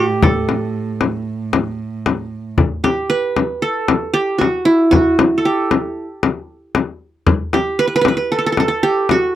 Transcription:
Already playing: A2 G4 A4
0.23 A4, frame drum
0.49 frame drum
1.01 frame drum
1.53 frame drum
2.06 frame drum
2.58 frame drum
2.84 G4, frame drum
3.10 B4
3.36 frame drum
3.62 A4
3.88 frame drum
4.14 G4
4.38 F#4, frame drum
4.65 E4
4.91 F#4, frame drum
5.19 frame drum
5.38 A4
5.45 G4
5.71 frame drum
6.23 frame drum
6.75 frame drum
7.27 frame drum
7.53 G4, frame drum
7.79 B4
7.87 B4
7.96 B4
8.01 B4, frame drum
8.08 B4
8.17 B4
8.32 A4
8.39 A4
8.46 A4
8.52 A4
8.57 A4, frame drum
8.68 A4
8.83 G4
9.09 F#4, frame drum

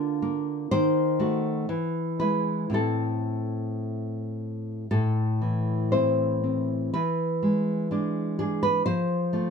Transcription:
Already playing: D3 A#3 D4 F4
0.22 A#3
0.71 D#3 C5
1.19 A3 F#4
1.69 E3
2.20 G#3 E4 B4
2.70 A2 C4 E4
2.74 A4
4.91 A2 A4
5.41 E3
5.92 C4 E4 C5
6.44 C4
6.94 E3 B4
7.43 G#3
7.91 G#3 D4
8.39 D4 G#4
8.63 B4
8.86 F3 C5
9.33 A3 F4

